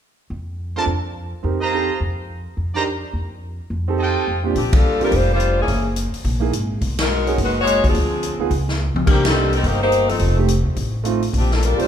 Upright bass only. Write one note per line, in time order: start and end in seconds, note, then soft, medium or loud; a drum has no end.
0.30 0.75 F2 medium
0.86 1.31 F2 medium
1.44 1.89 F2 medium
2.00 2.45 F2 medium
2.57 3.02 F2 medium
3.13 3.58 F2 medium
3.70 4.15 F2 medium
4.28 4.54 F2 medium
4.55 5.09 A#1 medium
5.11 5.65 F1 medium
5.68 6.10 F#1 medium
6.13 muted upright bass stroke soft
6.24 6.51 A#1 medium
6.51 6.78 G#1 medium
6.81 7.35 B1 medium
7.38 7.92 F#1 medium
7.94 8.36 D2 medium
8.39 8.49 D2 medium
8.50 8.93 C#2 medium
8.95 9.05 C#2 medium
9.07 9.61 C2 medium
9.63 10.17 G1 medium
10.20 10.62 F1 medium
10.64 10.75 D#2 medium
10.76 11.30 A1 medium
11.33 11.76 A#1 medium
11.79 muted upright bass stroke soft